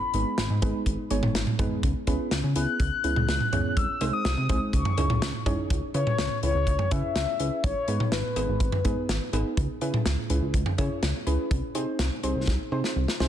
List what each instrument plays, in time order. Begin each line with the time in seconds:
Already playing: soft synth lead B5
0.14 analog synth bass G#1, synth pluck G#3 B3 D#4 G#4 B4, closed hi-hat
0.38 analog synth bass G#1, snare, closed hi-hat
0.50 analog synth bass G#2
0.62 analog synth bass G#1, synth pluck G#3 B3 D#4 G#4 B4, kick, closed hi-hat
0.86 analog synth bass G#1, kick, closed hi-hat
1.10 analog synth bass G#1, synth pluck G#3 B3 D#4 G#4 C#5, closed hi-hat
1.23 analog synth bass G#1, mid tom
1.35 analog synth bass G#1, snare, closed hi-hat
1.47 mid tom
1.59 analog synth bass G#1, synth pluck G#3 B3 D#4 G#4 B4, kick, closed hi-hat, mid tom
1.83 analog synth bass C#2, kick, closed hi-hat
2.07 analog synth bass C#2, synth pluck B3 C#4 E4 G#4 B4, kick, closed hi-hat
2.31 analog synth bass C#2, snare, closed hi-hat
2.44 analog synth bass C#3
2.56 analog synth bass C#2, synth pluck B3 C#4 E4 G#4 B4, soft synth lead F#6, closed hi-hat
2.80 analog synth bass C#2, kick, closed hi-hat
3.04 analog synth bass C#2, synth pluck B3 C#4 E4 G#4 B4, closed hi-hat
3.16 analog synth bass C#2, mid tom
3.28 analog synth bass C#2, snare, closed hi-hat
3.40 mid tom
3.53 analog synth bass C#2, synth pluck B3 C#4 E4 G#4 C#5, closed hi-hat, mid tom
3.77 analog synth bass C2, soft synth lead E6, kick, closed hi-hat
4.01 analog synth bass C2, synth pluck G#3 C4 D#4 G#4 C5, closed hi-hat, cowbell
4.13 soft synth lead D#6
4.25 analog synth bass C2, snare, closed hi-hat
4.37 analog synth bass C3
4.49 analog synth bass C2, synth pluck G#3 C4 D#4 G#4 C5, soft synth lead D#6, kick, closed hi-hat
4.73 analog synth bass C#2, soft synth lead C#6, kick, closed hi-hat
4.85 mid tom
4.98 analog synth bass C#2, synth pluck C#4 D#4 E4 G#4 C#5, closed hi-hat, cowbell
5.10 analog synth bass C#2, mid tom
5.22 analog synth bass C#2, snare, closed hi-hat
5.46 analog synth bass C#2, synth pluck C#4 D#4 E4 G#4 C#5, kick, closed hi-hat, mid tom
5.70 analog synth bass C#2, kick, closed hi-hat
5.94 analog synth bass C#3, synth pluck C#4 E4 G#4 B4, soft synth lead C#5, closed hi-hat
6.07 mid tom
6.19 analog synth bass C#2, snare, closed hi-hat
6.43 analog synth bass C#2, synth pluck C#4 E4 G#4 B4, soft synth lead C#5, closed hi-hat
6.55 analog synth bass C#2
6.67 analog synth bass C#2, kick, closed hi-hat
6.79 mid tom
6.91 analog synth bass C#3, synth pluck C#4 E4 G#4 B4, soft synth lead E5, kick, closed hi-hat
7.15 analog synth bass C#2, snare, closed hi-hat
7.40 analog synth bass C#2, synth pluck C#4 E4 G#4 B4, closed hi-hat
7.64 analog synth bass G#1, soft synth lead C#5, kick, closed hi-hat
7.88 analog synth bass G#2, synth pluck B3 D#4 G#4 B4, closed hi-hat
8.00 mid tom
8.12 analog synth bass G#1, soft synth lead B4, snare, closed hi-hat
8.36 analog synth bass G#1, synth pluck B3 D#4 G#4 B4, closed hi-hat, cowbell
8.49 analog synth bass G#1
8.60 analog synth bass G#1, kick, closed hi-hat
8.72 mid tom
8.85 analog synth bass G#2, synth pluck B3 D#4 G#4 B4, kick, closed hi-hat
9.09 analog synth bass G#1, snare, closed hi-hat
9.33 analog synth bass G#1, synth pluck B3 D#4 G#4 B4, closed hi-hat, cowbell
9.57 analog synth bass C#2, kick, closed hi-hat
9.81 analog synth bass C#3, synth pluck C#4 E4 G#4 B4, closed hi-hat
9.94 mid tom
10.06 analog synth bass C#2, snare, closed hi-hat
10.30 analog synth bass C#2, synth pluck C#4 E4 G#4 B4, closed hi-hat
10.42 analog synth bass C#2
10.54 analog synth bass C#2, kick, closed hi-hat
10.66 mid tom
10.78 analog synth bass C#3, synth pluck C#4 E4 G#4 C#5, kick, closed hi-hat, cowbell
11.03 analog synth bass C#2, snare, closed hi-hat
11.27 analog synth bass C#2, synth pluck C#4 E4 G#4 B4, closed hi-hat
11.51 analog synth bass C2, kick, closed hi-hat
11.75 analog synth bass C3, synth pluck C4 D#4 G#4 C5, closed hi-hat
11.99 analog synth bass C2, snare, closed hi-hat
12.23 analog synth bass C2, synth pluck C4 D#4 G#4 C5, closed hi-hat
12.36 analog synth bass C2
12.47 analog synth bass C2, kick, snare
12.72 analog synth bass C3, synth pluck C4 D#4 G#4 C5
12.84 snare
12.96 analog synth bass C2
13.08 snare
13.20 analog synth bass C2, synth pluck C4 D#4 G#4 C5, snare